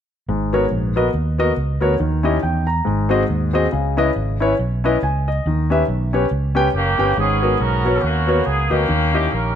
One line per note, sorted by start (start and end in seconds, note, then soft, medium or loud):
0.28 0.65 G#1 medium
0.28 0.92 G#2 medium
0.53 0.64 B3 medium
0.53 0.64 F#4 medium
0.53 0.65 A#4 medium
0.53 0.65 C#5 medium
0.71 1.08 A#1 medium
0.96 1.07 B3 medium
0.96 1.07 F#4 medium
0.96 1.08 A#4 medium
0.96 1.08 D#5 medium
1.14 1.51 D#2 medium
1.38 1.50 B3 medium
1.38 1.50 F#4 medium
1.38 1.51 A#4 medium
1.38 1.51 D#5 medium
1.57 1.78 C#2 medium
1.80 1.97 D2 medium
1.80 1.92 B3 medium
1.80 1.93 F#4 medium
1.80 1.93 A#4 medium
1.80 1.93 C#5 medium
2.00 2.37 D#2 medium
2.00 2.64 D#3 medium
2.23 2.35 C#4 medium
2.23 2.36 E4 medium
2.23 2.36 G4 medium
2.23 2.36 D#5 medium
2.43 2.80 E2 medium
2.43 2.66 G5 medium
2.67 3.08 A#5 medium
2.85 3.23 G#1 medium
2.85 3.49 G#2 medium
3.09 3.21 C4 medium
3.09 3.22 F#4 medium
3.09 3.22 G#4 medium
3.09 3.22 D#5 medium
3.30 3.66 D#2 medium
3.53 3.65 C4 medium
3.53 3.65 F#4 medium
3.53 3.65 G#4 medium
3.53 3.66 D#5 medium
3.72 4.10 C#2 medium
3.72 4.36 C#3 medium
3.97 4.08 C#4 medium
3.97 4.08 E4 medium
3.97 4.09 B4 medium
3.97 4.09 D#5 medium
4.16 4.53 G#1 medium
4.40 4.51 C#4 medium
4.40 4.52 E4 medium
4.40 4.52 B4 medium
4.40 4.52 C#5 medium
4.59 4.96 B1 medium
4.84 4.95 C#4 medium
4.84 4.95 E4 medium
4.84 4.95 B4 medium
4.84 4.96 D#5 medium
5.03 5.39 C#2 medium
5.03 5.26 G#5 medium
5.28 5.68 D#5 medium
5.46 5.82 D#2 medium
5.46 6.10 D#3 medium
5.70 5.81 C#4 medium
5.70 5.81 G4 medium
5.70 5.82 B4 medium
5.70 5.82 E5 medium
5.88 6.25 B1 medium
6.13 6.24 C#4 medium
6.13 6.24 G4 medium
6.13 6.25 B4 medium
6.13 6.25 C#5 medium
6.31 6.68 C#2 medium
6.55 6.67 C#4 medium
6.55 6.67 G4 medium
6.55 6.67 B4 medium
6.55 6.67 G5 medium
6.74 6.95 F#1 medium
6.74 7.15 A#3 medium
6.74 7.15 C#4 medium
6.74 7.16 G4 medium
6.98 7.15 G1 medium
6.98 7.10 C#4 medium
6.98 7.10 G4 medium
6.98 7.10 B4 medium
6.98 7.10 G5 medium
7.17 7.54 G#1 medium
7.17 7.81 G#2 medium
7.17 8.01 B3 medium
7.17 7.60 C#4 medium
7.17 7.62 G#4 medium
7.41 7.53 B3 medium
7.41 7.53 F#4 medium
7.41 7.54 A#4 medium
7.41 7.54 C#5 medium
7.60 7.97 B1 medium
7.60 8.43 C#4 medium
7.60 8.02 F#4 medium
7.60 8.04 A#4 medium
7.85 7.96 B3 medium
7.85 7.96 F#4 medium
7.85 7.97 A#4 medium
7.85 7.97 C#5 medium
8.03 8.40 D#2 medium
8.03 8.70 A#3 medium
8.03 8.86 B3 medium
8.03 8.47 F#4 medium
8.27 8.39 B3 medium
8.27 8.39 F#4 medium
8.27 8.40 A#4 medium
8.27 8.40 C#5 medium
8.47 8.68 C#2 medium
8.47 8.71 G#4 medium
8.70 8.87 D2 medium
8.70 9.54 A#3 medium
8.70 8.82 B3 medium
8.70 9.33 C#4 medium
8.70 8.82 F#4 medium
8.70 9.13 G4 medium
8.70 8.82 A#4 medium
8.70 8.83 D#5 medium
8.88 9.27 D#2 loud
8.88 9.53 D#3 medium
9.13 9.25 C#4 medium
9.13 9.25 E4 medium
9.13 9.26 G4 medium
9.13 9.32 G4 medium
9.13 9.26 D#5 medium
9.33 9.55 A#1 medium
9.33 9.55 C#4 medium
9.33 9.55 G4 medium
9.33 9.55 A#4 medium